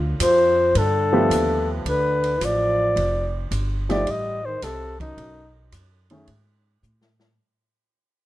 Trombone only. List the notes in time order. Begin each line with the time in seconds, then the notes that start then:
0.20 F3
0.76 D3
1.87 D3
2.40 F3
3.90 F3
4.06 G3
4.45 D#3
4.62 C3
4.99 F#2